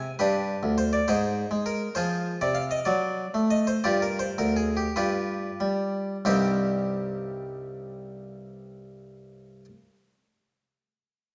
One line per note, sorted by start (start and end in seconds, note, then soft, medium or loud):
0.00 0.14 G#5 loud
0.19 0.54 G2 medium
0.19 0.74 D4 medium
0.19 0.74 G4 medium
0.19 0.69 B4 loud
0.63 0.98 D2 medium
0.78 0.92 C5 loud
0.93 1.07 D5 medium
1.08 1.43 G#2 medium
1.08 1.62 D#4 medium
1.08 1.62 G#4 medium
1.08 1.57 C5 loud
1.51 1.86 G#3 medium
1.66 1.95 A#4 loud
1.95 2.31 F3 medium
1.95 2.38 F4 medium
1.95 2.37 G#4 medium
1.95 2.40 C5 medium
2.41 2.78 C3 medium
2.41 2.56 D5 loud
2.55 2.70 F5 loud
2.71 2.86 D#5 loud
2.85 3.25 F#3 medium
2.85 3.41 D5 loud
3.34 3.75 A3 medium
3.50 3.68 D#5 loud
3.67 3.85 C5 loud
3.84 4.28 G2 medium
3.84 4.02 F4 medium
3.84 4.01 G4 medium
3.84 4.02 D5 loud
4.02 4.21 A#4 medium
4.19 4.39 C5 loud
4.38 4.86 D2 medium
4.38 4.58 A#4 medium
4.56 4.77 G#4 medium
4.77 4.96 G4 medium
4.96 5.48 G2 medium
4.96 6.25 F4 medium
4.96 6.25 G4 medium
4.96 6.28 B4 medium
5.60 6.15 G3 medium
6.25 9.65 C2 medium
6.25 9.65 G2 medium
6.25 9.65 G3 medium
6.25 9.65 C4 soft
6.25 9.65 D#4 soft
6.25 9.65 G4 soft
6.25 9.65 C5 medium